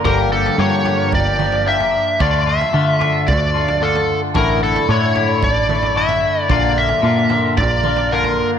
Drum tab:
T2 |----------o-----|----------------|----------o-----|----------o-----|
FT |o--o--o-o--o-o--|o--o--o-o--o-o--|o--o--o-o--o-o--|o--o--o-o--o-o--|
BD |o-------o-------|o-------o-------|o-------o-------|o-------o-------|